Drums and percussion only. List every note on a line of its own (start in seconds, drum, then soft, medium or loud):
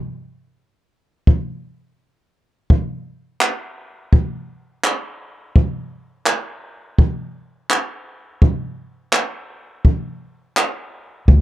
1.27 kick medium
2.70 kick loud
3.41 clap medium
4.13 kick medium
4.84 clap loud
5.56 kick loud
6.26 clap medium
6.98 kick medium
7.70 clap medium
8.42 kick loud
9.13 clap medium
9.85 kick medium
10.57 clap loud
11.28 kick loud